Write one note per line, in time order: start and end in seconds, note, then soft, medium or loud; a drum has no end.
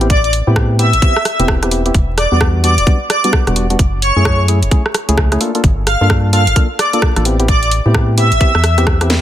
0.00 0.42 A1 medium
0.00 0.08 B3 medium
0.00 0.08 C4 medium
0.00 0.08 E4 medium
0.00 0.08 G4 medium
0.00 closed hi-hat soft
0.10 0.19 D5 medium
0.10 kick loud
0.10 closed hi-hat medium
0.24 0.30 D5 medium
0.24 closed hi-hat soft
0.33 open hi-hat loud
0.47 0.95 A2 loud
0.47 0.55 B3 medium
0.47 0.55 C4 medium
0.47 0.55 E4 medium
0.47 0.55 G4 medium
0.56 0.77 B3 medium
0.56 0.77 C4 medium
0.56 0.77 E4 medium
0.56 kick loud
0.56 cross-stick loud
0.79 0.90 B3 medium
0.79 0.90 C4 medium
0.79 0.90 E4 medium
0.79 0.90 G4 loud
0.79 1.45 E5 loud
0.79 open hi-hat medium
0.93 1.00 A1 medium
0.93 closed hi-hat medium
1.02 1.13 B3 medium
1.02 1.13 C4 medium
1.02 1.13 E4 medium
1.02 1.13 G4 medium
1.02 kick loud
1.02 closed hi-hat medium
1.16 cross-stick medium
1.25 cross-stick medium
1.25 open hi-hat loud
1.39 1.91 E1 medium
1.39 1.59 B3 loud
1.39 1.59 C4 medium
1.39 1.59 E4 medium
1.39 1.59 G4 loud
1.39 closed hi-hat medium
1.48 kick loud
1.48 cross-stick loud
1.63 1.70 B3 loud
1.63 1.70 C4 medium
1.63 1.70 E4 medium
1.63 1.70 G4 loud
1.63 cross-stick medium
1.63 closed hi-hat medium
1.71 1.82 B3 medium
1.71 1.82 C4 medium
1.71 1.82 E4 medium
1.71 1.82 G4 medium
1.71 open hi-hat medium
1.86 1.93 B3 medium
1.86 1.93 C4 medium
1.86 1.93 E4 medium
1.86 1.93 G4 medium
1.86 closed hi-hat soft
1.94 2.27 E1 loud
1.94 kick loud
1.94 closed hi-hat medium
2.17 2.27 D5 medium
2.17 cross-stick medium
2.17 open hi-hat loud
2.32 2.79 E2 loud
2.32 2.39 G3 medium
2.32 2.39 B3 medium
2.32 2.39 D4 medium
2.32 2.39 F#4 medium
2.32 2.38 D5 medium
2.41 2.62 G3 medium
2.41 kick loud
2.41 cross-stick loud
2.64 2.75 G3 medium
2.64 2.75 B3 medium
2.64 2.75 D4 medium
2.64 2.75 F#4 loud
2.64 2.84 D5 loud
2.64 open hi-hat medium
2.78 2.85 E1 medium
2.78 closed hi-hat medium
2.87 2.98 G3 medium
2.87 2.98 B3 medium
2.87 2.98 D4 medium
2.87 2.98 F#4 medium
2.87 kick loud
2.87 closed hi-hat medium
3.10 3.19 D5 loud
3.10 cross-stick medium
3.10 open hi-hat loud
3.24 3.44 G3 loud
3.24 3.44 B3 medium
3.24 3.44 D4 medium
3.24 3.44 F#4 loud
3.24 3.30 D5 medium
3.24 closed hi-hat medium
3.33 kick loud
3.33 cross-stick loud
3.47 3.76 E1 medium
3.47 3.55 G3 loud
3.47 3.55 B3 medium
3.47 3.55 D4 medium
3.47 3.55 F#4 loud
3.47 cross-stick medium
3.47 closed hi-hat medium
3.56 3.67 G3 medium
3.56 3.67 B3 medium
3.56 3.67 D4 medium
3.56 3.67 F#4 medium
3.56 open hi-hat medium
3.70 3.77 G3 medium
3.70 3.77 B3 medium
3.70 3.77 D4 medium
3.70 3.77 F#4 medium
3.70 closed hi-hat soft
3.79 4.11 F#1 medium
3.79 kick loud
3.79 closed hi-hat medium
4.02 4.39 C#5 loud
4.02 open hi-hat loud
4.16 4.64 F#2 loud
4.16 4.24 A3 medium
4.16 4.24 C#4 medium
4.16 4.24 E4 medium
4.16 4.24 G#4 loud
4.25 kick loud
4.25 cross-stick loud
4.48 4.59 A3 medium
4.48 4.59 C#4 medium
4.48 4.59 E4 medium
4.48 4.59 G#4 loud
4.48 open hi-hat medium
4.63 4.69 F#1 medium
4.63 closed hi-hat medium
4.71 4.82 A3 medium
4.71 4.82 C#4 medium
4.71 4.82 E4 medium
4.71 4.82 G#4 medium
4.71 kick loud
4.71 closed hi-hat medium
4.86 cross-stick medium
4.95 cross-stick medium
4.95 open hi-hat loud
5.09 5.37 C#2 medium
5.09 5.28 A3 loud
5.09 5.28 C#4 medium
5.09 5.28 E4 medium
5.09 5.28 G#4 loud
5.09 closed hi-hat medium
5.18 kick loud
5.18 cross-stick loud
5.32 5.39 A3 loud
5.32 5.39 C#4 medium
5.32 5.39 E4 medium
5.32 5.39 G#4 loud
5.32 cross-stick medium
5.32 closed hi-hat medium
5.41 5.52 A#3 medium
5.41 5.52 D4 medium
5.41 5.52 F4 medium
5.41 5.52 A4 medium
5.41 open hi-hat loud
5.55 5.62 A#3 medium
5.55 5.62 D4 medium
5.55 5.62 F4 medium
5.55 5.62 A4 medium
5.55 closed hi-hat soft
5.64 5.96 G1 loud
5.64 kick loud
5.64 closed hi-hat medium
5.87 5.96 F5 medium
5.87 cross-stick medium
5.87 open hi-hat loud
6.01 6.49 G2 loud
6.01 6.09 A#3 medium
6.01 6.09 D4 medium
6.01 6.09 F4 medium
6.01 6.09 A4 medium
6.01 6.07 F5 medium
6.10 6.31 A#3 medium
6.10 kick loud
6.10 cross-stick loud
6.33 6.44 A#3 medium
6.33 6.44 D4 medium
6.33 6.44 F4 medium
6.33 6.44 A4 loud
6.33 6.53 F5 loud
6.33 open hi-hat medium
6.47 6.54 G1 medium
6.47 closed hi-hat medium
6.56 6.67 A#3 medium
6.56 6.67 D4 medium
6.56 6.67 F4 medium
6.56 6.67 A4 medium
6.56 kick loud
6.56 closed hi-hat medium
6.79 6.88 D5 medium
6.79 cross-stick medium
6.79 open hi-hat loud
6.93 7.13 A#3 loud
6.93 7.13 D4 medium
6.93 7.13 F4 medium
6.93 7.13 A4 loud
6.93 6.99 D5 medium
6.93 closed hi-hat medium
7.02 kick loud
7.02 cross-stick loud
7.16 7.81 A1 medium
7.16 7.24 A#3 loud
7.16 7.24 D4 medium
7.16 7.24 F4 medium
7.16 7.24 A4 loud
7.16 cross-stick medium
7.16 closed hi-hat medium
7.25 7.36 B3 medium
7.25 7.36 C4 medium
7.25 7.36 E4 medium
7.25 7.36 G4 medium
7.25 open hi-hat loud
7.40 7.46 B3 medium
7.40 7.46 C4 medium
7.40 7.46 E4 medium
7.40 7.46 G4 loud
7.40 closed hi-hat soft
7.48 7.57 D5 medium
7.48 kick loud
7.48 closed hi-hat medium
7.63 7.68 D5 medium
7.63 closed hi-hat soft
7.71 open hi-hat loud
7.86 8.33 A2 loud
7.86 7.93 B3 medium
7.86 7.93 C4 medium
7.86 7.93 E4 medium
7.86 7.93 G4 medium
7.94 8.16 C4 medium
7.94 kick loud
7.94 cross-stick loud
8.18 8.29 B3 medium
8.18 8.29 C4 medium
8.18 8.29 E4 medium
8.18 8.29 G4 loud
8.18 8.83 E5 loud
8.18 open hi-hat loud
8.32 8.39 A1 medium
8.32 closed hi-hat medium
8.41 8.52 B3 medium
8.41 8.52 C4 medium
8.41 8.52 E4 medium
8.41 8.52 G4 medium
8.41 kick loud
8.41 closed hi-hat medium
8.55 9.19 E2 medium
8.55 cross-stick medium
8.64 cross-stick medium
8.64 open hi-hat loud
8.78 8.98 B3 loud
8.78 8.98 C4 medium
8.78 8.98 E4 medium
8.78 8.98 G4 loud
8.78 cross-stick soft
8.78 closed hi-hat medium
8.87 kick loud
8.87 cross-stick loud
9.01 9.09 B3 loud
9.01 9.09 C4 medium
9.01 9.09 E4 medium
9.01 9.09 G4 loud
9.01 cross-stick medium
9.01 closed hi-hat medium
9.10 9.21 B3 medium
9.10 9.21 C4 medium
9.10 9.21 E4 medium
9.10 snare medium
9.10 open hi-hat loud